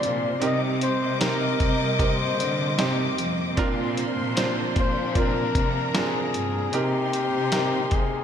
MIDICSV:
0, 0, Header, 1, 7, 480
1, 0, Start_track
1, 0, Tempo, 789474
1, 254, Time_signature, 4, 2, 24, 8
1, 5009, End_track
2, 0, Start_track
2, 0, Title_t, "Violin section"
2, 0, Program_c, 0, 48
2, 0, Note_on_c, 0, 72, 71
2, 0, Note_on_c, 0, 84, 81
2, 227, Note_off_c, 0, 84, 0
2, 229, Note_off_c, 0, 72, 0
2, 256, Note_on_c, 0, 75, 78
2, 259, Note_on_c, 0, 86, 85
2, 2151, Note_off_c, 0, 75, 0
2, 2152, Note_off_c, 0, 86, 0
2, 2175, Note_on_c, 0, 72, 82
2, 2176, Note_on_c, 0, 84, 84
2, 3116, Note_off_c, 0, 72, 0
2, 3116, Note_off_c, 0, 84, 0
2, 3138, Note_on_c, 0, 70, 78
2, 3140, Note_on_c, 0, 82, 86
2, 4077, Note_off_c, 0, 70, 0
2, 4078, Note_off_c, 0, 82, 0
2, 4091, Note_on_c, 0, 84, 80
2, 4096, Note_on_c, 0, 72, 74
2, 5009, Note_off_c, 0, 72, 0
2, 5009, Note_off_c, 0, 84, 0
2, 5009, End_track
3, 0, Start_track
3, 0, Title_t, "Flugelhorn"
3, 0, Program_c, 1, 56
3, 0, Note_on_c, 1, 74, 88
3, 264, Note_off_c, 1, 74, 0
3, 273, Note_on_c, 1, 75, 93
3, 371, Note_off_c, 1, 75, 0
3, 504, Note_on_c, 1, 72, 95
3, 723, Note_off_c, 1, 72, 0
3, 734, Note_on_c, 1, 70, 90
3, 1190, Note_off_c, 1, 70, 0
3, 1227, Note_on_c, 1, 72, 91
3, 1916, Note_off_c, 1, 72, 0
3, 2920, Note_on_c, 1, 72, 99
3, 3131, Note_off_c, 1, 72, 0
3, 3159, Note_on_c, 1, 70, 102
3, 3602, Note_off_c, 1, 70, 0
3, 3624, Note_on_c, 1, 68, 82
3, 4112, Note_on_c, 1, 67, 98
3, 4121, Note_off_c, 1, 68, 0
3, 4828, Note_on_c, 1, 68, 79
3, 4837, Note_off_c, 1, 67, 0
3, 5009, Note_off_c, 1, 68, 0
3, 5009, End_track
4, 0, Start_track
4, 0, Title_t, "Grand piano"
4, 0, Program_c, 2, 0
4, 0, Control_c, 2, 64, 127
4, 0, Note_on_c, 2, 60, 69
4, 0, Note_on_c, 2, 62, 67
4, 0, Note_on_c, 2, 65, 66
4, 0, Note_on_c, 2, 67, 72
4, 0, Note_on_c, 2, 70, 77
4, 227, Note_off_c, 2, 60, 0
4, 229, Note_off_c, 2, 62, 0
4, 231, Note_off_c, 2, 65, 0
4, 234, Note_off_c, 2, 70, 0
4, 244, Note_on_c, 2, 60, 88
4, 249, Note_on_c, 2, 48, 55
4, 249, Note_on_c, 2, 63, 81
4, 253, Note_off_c, 2, 67, 0
4, 253, Note_on_c, 2, 67, 82
4, 257, Note_on_c, 2, 70, 92
4, 263, Control_c, 2, 64, 0
4, 376, Control_c, 2, 64, 127
4, 705, Note_off_c, 2, 60, 0
4, 708, Note_off_c, 2, 63, 0
4, 710, Note_off_c, 2, 67, 0
4, 712, Note_off_c, 2, 70, 0
4, 725, Note_on_c, 2, 60, 69
4, 728, Note_on_c, 2, 63, 65
4, 733, Note_on_c, 2, 67, 61
4, 735, Note_on_c, 2, 72, 77
4, 947, Note_off_c, 2, 48, 0
4, 1185, Note_off_c, 2, 60, 0
4, 1187, Note_off_c, 2, 63, 0
4, 1190, Note_off_c, 2, 67, 0
4, 1191, Note_off_c, 2, 72, 0
4, 1202, Note_on_c, 2, 60, 65
4, 1208, Note_on_c, 2, 75, 65
4, 1211, Note_on_c, 2, 67, 62
4, 1215, Note_on_c, 2, 70, 77
4, 1664, Note_off_c, 2, 60, 0
4, 1667, Note_off_c, 2, 75, 0
4, 1668, Note_off_c, 2, 67, 0
4, 1670, Note_off_c, 2, 70, 0
4, 1687, Note_on_c, 2, 60, 74
4, 1694, Note_on_c, 2, 63, 68
4, 1697, Note_on_c, 2, 67, 66
4, 1700, Note_on_c, 2, 72, 77
4, 2147, Note_off_c, 2, 60, 0
4, 2150, Note_off_c, 2, 63, 0
4, 2152, Note_off_c, 2, 67, 0
4, 2153, Note_off_c, 2, 72, 0
4, 2170, Note_on_c, 2, 60, 106
4, 2172, Note_on_c, 2, 62, 97
4, 2173, Note_on_c, 2, 46, 69
4, 2176, Note_on_c, 2, 65, 104
4, 2181, Note_on_c, 2, 70, 123
4, 2182, Control_c, 2, 64, 0
4, 2283, Control_c, 2, 64, 127
4, 2628, Note_off_c, 2, 60, 0
4, 2629, Note_off_c, 2, 62, 0
4, 2631, Note_off_c, 2, 65, 0
4, 2633, Note_off_c, 2, 70, 0
4, 2648, Note_on_c, 2, 60, 88
4, 2652, Note_on_c, 2, 62, 82
4, 2657, Note_on_c, 2, 65, 79
4, 2662, Note_on_c, 2, 72, 94
4, 2869, Note_off_c, 2, 46, 0
4, 3107, Note_off_c, 2, 60, 0
4, 3109, Note_off_c, 2, 62, 0
4, 3112, Note_off_c, 2, 65, 0
4, 3114, Note_off_c, 2, 72, 0
4, 3129, Note_on_c, 2, 60, 73
4, 3132, Note_on_c, 2, 62, 64
4, 3136, Note_on_c, 2, 65, 65
4, 3143, Note_on_c, 2, 70, 79
4, 3588, Note_off_c, 2, 60, 0
4, 3589, Note_off_c, 2, 62, 0
4, 3591, Note_off_c, 2, 65, 0
4, 3594, Note_off_c, 2, 70, 0
4, 3608, Note_on_c, 2, 60, 74
4, 3609, Note_on_c, 2, 62, 66
4, 3616, Note_on_c, 2, 65, 72
4, 3618, Note_on_c, 2, 70, 82
4, 4067, Note_off_c, 2, 60, 0
4, 4068, Note_off_c, 2, 62, 0
4, 4071, Note_off_c, 2, 65, 0
4, 4072, Note_off_c, 2, 70, 0
4, 4088, Note_on_c, 2, 60, 89
4, 4093, Note_on_c, 2, 63, 80
4, 4096, Note_on_c, 2, 48, 59
4, 4096, Note_on_c, 2, 67, 84
4, 4100, Note_on_c, 2, 70, 92
4, 4102, Control_c, 2, 64, 0
4, 4221, Control_c, 2, 64, 127
4, 4547, Note_off_c, 2, 60, 0
4, 4550, Note_off_c, 2, 63, 0
4, 4551, Note_off_c, 2, 67, 0
4, 4553, Note_off_c, 2, 70, 0
4, 4565, Note_on_c, 2, 60, 67
4, 4571, Note_on_c, 2, 63, 60
4, 4576, Note_on_c, 2, 79, 62
4, 4579, Note_on_c, 2, 70, 74
4, 4791, Note_off_c, 2, 48, 0
4, 5009, Note_off_c, 2, 60, 0
4, 5009, Note_off_c, 2, 63, 0
4, 5009, Note_off_c, 2, 70, 0
4, 5009, Note_off_c, 2, 79, 0
4, 5009, End_track
5, 0, Start_track
5, 0, Title_t, "String section"
5, 0, Program_c, 3, 48
5, 0, Note_on_c, 3, 48, 80
5, 0, Note_on_c, 3, 53, 66
5, 0, Note_on_c, 3, 58, 64
5, 0, Note_on_c, 3, 62, 75
5, 231, Note_off_c, 3, 53, 0
5, 231, Note_off_c, 3, 58, 0
5, 232, Note_off_c, 3, 62, 0
5, 257, Note_on_c, 3, 55, 65
5, 262, Note_on_c, 3, 75, 78
5, 263, Note_on_c, 3, 58, 64
5, 2157, Note_off_c, 3, 55, 0
5, 2159, Note_off_c, 3, 75, 0
5, 2177, Note_on_c, 3, 53, 73
5, 2182, Note_on_c, 3, 62, 82
5, 4073, Note_off_c, 3, 48, 0
5, 4077, Note_off_c, 3, 53, 0
5, 4079, Note_off_c, 3, 62, 0
5, 4096, Note_on_c, 3, 63, 79
5, 4101, Note_on_c, 3, 48, 73
5, 5009, Note_off_c, 3, 48, 0
5, 5009, Note_off_c, 3, 58, 0
5, 5009, Note_off_c, 3, 63, 0
5, 5009, End_track
6, 0, Start_track
6, 0, Title_t, "Cello section"
6, 0, Program_c, 4, 48
6, 10, Note_on_c, 4, 46, 87
6, 235, Note_off_c, 4, 46, 0
6, 254, Note_on_c, 4, 48, 93
6, 590, Note_off_c, 4, 48, 0
6, 613, Note_on_c, 4, 48, 86
6, 949, Note_off_c, 4, 48, 0
6, 974, Note_on_c, 4, 48, 83
6, 1454, Note_off_c, 4, 48, 0
6, 1455, Note_on_c, 4, 50, 87
6, 1678, Note_off_c, 4, 50, 0
6, 1697, Note_on_c, 4, 48, 89
6, 1919, Note_off_c, 4, 48, 0
6, 1940, Note_on_c, 4, 41, 87
6, 2161, Note_off_c, 4, 41, 0
6, 2175, Note_on_c, 4, 46, 103
6, 2510, Note_off_c, 4, 46, 0
6, 2538, Note_on_c, 4, 46, 90
6, 2872, Note_off_c, 4, 46, 0
6, 2896, Note_on_c, 4, 46, 102
6, 3351, Note_off_c, 4, 46, 0
6, 3375, Note_on_c, 4, 48, 93
6, 3598, Note_off_c, 4, 48, 0
6, 3617, Note_on_c, 4, 46, 86
6, 3839, Note_off_c, 4, 46, 0
6, 3856, Note_on_c, 4, 43, 79
6, 4078, Note_off_c, 4, 43, 0
6, 4095, Note_on_c, 4, 48, 90
6, 4430, Note_off_c, 4, 48, 0
6, 4455, Note_on_c, 4, 48, 91
6, 4790, Note_off_c, 4, 48, 0
6, 4814, Note_on_c, 4, 48, 77
6, 5009, Note_off_c, 4, 48, 0
6, 5009, End_track
7, 0, Start_track
7, 0, Title_t, "Drums"
7, 19, Note_on_c, 9, 42, 73
7, 80, Note_off_c, 9, 42, 0
7, 253, Note_on_c, 9, 42, 74
7, 314, Note_off_c, 9, 42, 0
7, 495, Note_on_c, 9, 42, 77
7, 556, Note_off_c, 9, 42, 0
7, 734, Note_on_c, 9, 42, 101
7, 737, Note_on_c, 9, 38, 107
7, 795, Note_off_c, 9, 42, 0
7, 798, Note_off_c, 9, 38, 0
7, 973, Note_on_c, 9, 42, 52
7, 974, Note_on_c, 9, 36, 78
7, 1034, Note_off_c, 9, 42, 0
7, 1035, Note_off_c, 9, 36, 0
7, 1212, Note_on_c, 9, 36, 83
7, 1214, Note_on_c, 9, 42, 68
7, 1273, Note_off_c, 9, 36, 0
7, 1274, Note_off_c, 9, 42, 0
7, 1460, Note_on_c, 9, 42, 79
7, 1520, Note_off_c, 9, 42, 0
7, 1694, Note_on_c, 9, 38, 105
7, 1694, Note_on_c, 9, 42, 80
7, 1755, Note_off_c, 9, 38, 0
7, 1755, Note_off_c, 9, 42, 0
7, 1936, Note_on_c, 9, 42, 76
7, 1997, Note_off_c, 9, 42, 0
7, 2172, Note_on_c, 9, 42, 68
7, 2174, Note_on_c, 9, 36, 99
7, 2233, Note_off_c, 9, 42, 0
7, 2235, Note_off_c, 9, 36, 0
7, 2417, Note_on_c, 9, 42, 79
7, 2477, Note_off_c, 9, 42, 0
7, 2656, Note_on_c, 9, 42, 106
7, 2659, Note_on_c, 9, 38, 102
7, 2717, Note_off_c, 9, 42, 0
7, 2720, Note_off_c, 9, 38, 0
7, 2893, Note_on_c, 9, 42, 53
7, 2896, Note_on_c, 9, 36, 88
7, 2954, Note_off_c, 9, 42, 0
7, 2957, Note_off_c, 9, 36, 0
7, 3133, Note_on_c, 9, 42, 72
7, 3134, Note_on_c, 9, 36, 89
7, 3194, Note_off_c, 9, 42, 0
7, 3195, Note_off_c, 9, 36, 0
7, 3375, Note_on_c, 9, 36, 84
7, 3376, Note_on_c, 9, 42, 78
7, 3436, Note_off_c, 9, 36, 0
7, 3436, Note_off_c, 9, 42, 0
7, 3615, Note_on_c, 9, 38, 107
7, 3615, Note_on_c, 9, 42, 75
7, 3676, Note_off_c, 9, 38, 0
7, 3676, Note_off_c, 9, 42, 0
7, 3856, Note_on_c, 9, 42, 76
7, 3917, Note_off_c, 9, 42, 0
7, 4091, Note_on_c, 9, 42, 70
7, 4152, Note_off_c, 9, 42, 0
7, 4337, Note_on_c, 9, 42, 79
7, 4398, Note_off_c, 9, 42, 0
7, 4571, Note_on_c, 9, 42, 104
7, 4575, Note_on_c, 9, 38, 111
7, 4632, Note_off_c, 9, 42, 0
7, 4635, Note_off_c, 9, 38, 0
7, 4810, Note_on_c, 9, 42, 54
7, 4813, Note_on_c, 9, 36, 82
7, 4870, Note_off_c, 9, 42, 0
7, 4874, Note_off_c, 9, 36, 0
7, 5009, End_track
0, 0, End_of_file